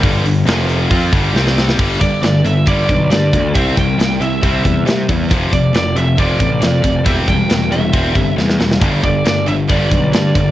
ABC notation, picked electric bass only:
X:1
M:4/4
L:1/8
Q:1/4=137
K:C
V:1 name="Picked electric bass" clef=bass
G,,, G,,, F,,,2 F,, G,,, C,,2 | G,,, G,,, G,,, G,,, G,,, B,,, G,, D,, | C,, C,, C,, C,, C,, E,, C, E,, | F,,, F,,, F,,, F,,, F,,, A,,, F,, F,,, |
E,,, E,,, E,,, E,,, E,,, G,,, E,, E,,, | G,,, G,,, G,,, G,,, G,,, B,,, G,, G,,, |]